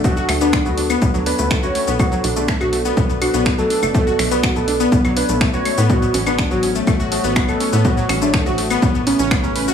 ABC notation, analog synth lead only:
X:1
M:4/4
L:1/16
Q:1/4=123
K:Bm
V:1 name="Analog synth lead"
F2 z D z F z4 B2 z c2 z | F2 z D z F z4 F2 z A2 z | A2 z F z A z4 B2 z c2 z | F2 z D z F z4 F2 z A2 z |
F2 z D z F z4 C2 z C2 z |]